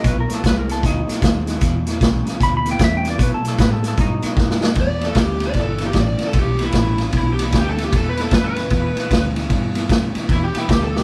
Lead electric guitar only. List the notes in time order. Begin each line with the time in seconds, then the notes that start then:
4.81 D5
5.05 A4
5.20 G4
5.47 D5
5.60 A4
5.86 G4
6.00 D5
6.27 A4
6.39 G4
6.65 E4
7.18 E4
7.33 G4
7.44 E4
7.57 G4
7.70 A4
7.84 G4
7.97 A4
8.09 B4
8.21 A4
8.34 B4
8.45 B4
10.32 E4
10.44 G4
10.58 E4
10.70 G4
10.83 A4
10.96 G4